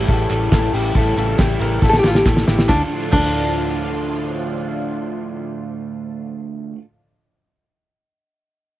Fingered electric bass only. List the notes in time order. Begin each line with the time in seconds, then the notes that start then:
0.09 A1
0.30 A1
0.52 A1
0.73 A1
0.95 A1
1.16 A1
1.39 A1
1.60 A1
1.82 A1
2.04 A1
2.26 A1
2.47 A1
2.69 D2
3.13 D2